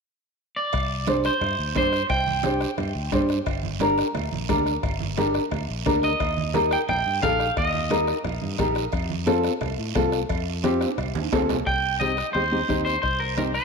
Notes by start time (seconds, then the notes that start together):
0.56 D5
0.73 C2, bombo low, bombo rim, cowbell, high conga, long guiro
1.07 D4 G4 C5, bombo rim, cowbell, high conga, short guiro
1.24 C5, bombo rim, short guiro
1.41 G2, bombo rim, cowbell, high conga, low conga, long guiro
1.59 D2
1.75 G2 D4 G4 C5, bombo low, bombo rim, cowbell, high conga, low timbale, short guiro
1.93 bombo rim, short guiro
2.10 C2 G5, bombo low, bombo rim, cowbell, high conga, long guiro
2.27 high conga
2.43 D4 G4 C5, bombo rim, cowbell, high conga, short guiro
2.61 bombo rim, short guiro
2.78 G2, bombo rim, cowbell, high conga, low conga, long guiro
2.95 D2
3.12 G2 D4 G4 C5, bombo low, bombo rim, cowbell, high conga, low conga, low timbale, short guiro
3.29 bombo rim, short guiro
3.46 G1, bombo low, bombo rim, cowbell, high conga, long guiro
3.63 high conga
3.80 D4 G4 A#4, bombo rim, cowbell, high conga, short guiro
3.98 bombo rim, short guiro
4.15 D2, bombo rim, cowbell, high conga, low conga, long guiro
4.32 A#1, high conga
4.49 D2 D4 G4 A#4, bombo low, bombo rim, cowbell, high conga, low timbale, short guiro
4.66 bombo rim, short guiro
4.83 G1, bombo low, bombo rim, cowbell, high conga, low conga, long guiro
5.00 high conga
5.17 D4 G4 A#4, bombo rim, cowbell, high conga, short guiro
5.34 bombo rim, short guiro
5.51 D2, bombo rim, cowbell, high conga, low conga, long guiro
5.69 A#1
5.86 D2 D4 G4 A#4, bombo low, bombo rim, cowbell, high conga, low timbale, short guiro
6.03 D#5, bombo rim, short guiro
6.20 D#2, bombo low, bombo rim, cowbell, high conga, long guiro
6.37 high conga
6.54 D#4 G4 A#4, bombo rim, cowbell, high conga, short guiro
6.71 G5, bombo rim, short guiro
6.89 A#1 G5, bombo rim, cowbell, high conga, low conga, long guiro
7.06 G2
7.22 A#1 D#4 G4 A4 F5, bombo low, bombo rim, cowbell, high conga, low timbale, short guiro
7.40 bombo rim, short guiro
7.56 D#2 D#5, bombo low, bombo rim, cowbell, high conga, long guiro
7.74 high conga
7.90 D#4 G4 A#4, bombo rim, cowbell, high conga, short guiro
8.07 bombo rim, short guiro
8.24 A#1, bombo rim, cowbell, high conga, low conga, long guiro
8.41 G2, high conga
8.58 A#1 D#4 G4 A#4, bombo low, bombo rim, cowbell, high conga, short guiro
8.75 bombo rim, short guiro
8.92 F2, bombo low, bombo rim, cowbell, high conga, long guiro
9.10 high conga
9.26 C4 F4 A4, bombo rim, cowbell, high conga, short guiro
9.44 bombo rim, short guiro
9.61 C2, bombo rim, cowbell, high conga, low conga, long guiro
9.78 A2
9.95 C2 C4 F4 A4, bombo low, bombo rim, cowbell, high conga, low timbale, short guiro
10.12 bombo rim, short guiro
10.29 F2, bombo low, bombo rim, cowbell, high conga, low conga, long guiro
10.63 C4 F4 G4, bombo rim, cowbell, high conga, short guiro
10.81 bombo rim, high timbale, short guiro
10.98 C2, bombo rim, cowbell, high conga, low conga, long guiro
11.15 D#2, high conga, high timbale
11.32 D2 C4 F4 A4, bombo low, bombo rim, cowbell, low conga, low timbale, short guiro
11.49 C2, bombo rim, low conga, low timbale, short guiro
11.67 C2 G5, bombo low, bombo rim, high conga, long guiro
12.00 C4 D#4 G4 D#5, bombo rim, high conga, short guiro
12.17 bombo rim, short guiro
12.33 D#2 C4 D#4 G4 C5, bombo rim, high conga, long guiro
12.52 C4 D#4 G4
12.68 D#2 C4 D#4 G4, bombo low, bombo rim, high conga, short guiro
12.85 C5, bombo rim, short guiro
13.02 C2 C5, bombo low, bombo rim, high conga, long guiro
13.20 A#4
13.37 C4 D#4 G4 A#4, bombo rim, high conga, short guiro
13.54 C5, bombo rim, short guiro